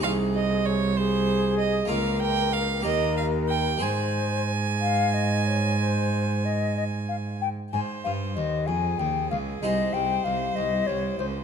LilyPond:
<<
  \new Staff \with { instrumentName = "Flute" } { \time 12/8 \key aes \major \tempo 4. = 63 aes'4. aes'4. bes'4. bes'4. | c''4. f''8 ees''8 des''8 c''4 ees''8 ees''8 f''8 g''8 | aes''8 f''8 ees''8 aes''8 g''8 f''8 ees''8 g''8 f''8 ees''8 des''8 c''8 | }
  \new Staff \with { instrumentName = "Violin" } { \time 12/8 \key aes \major f''8 ees''8 des''8 c''4 ees''8 f''8 g''8 f''8 ees''8 f''8 g''8 | aes''1~ aes''4. r8 | c''4. aes'4. c''2. | }
  \new Staff \with { instrumentName = "Harpsichord" } { \time 12/8 \key aes \major <ees' aes' c''>2. <bes f' bes'>4. <bes g' bes'>4. | <aes aes' c''>1. | r2. <ees' aes' c''>2. | }
  \new Staff \with { instrumentName = "Harpsichord" } { \clef bass \time 12/8 \key aes \major c,2. des,4. ees,4. | aes,1~ aes,4. r8 | aes,8 g,8 ees,8 f,8 ees,8 des,8 c,8 c,8 c,8 c,8 c,8 des,8 | }
  \new Staff \with { instrumentName = "Cello" } { \clef bass \time 12/8 \key aes \major c,2. des,4. ees,4. | aes,1~ aes,4. r8 | aes,8 g,8 ees,8 f,8 ees,8 des,8 c,8 c,8 c,8 c,8 c,8 des,8 | }
>>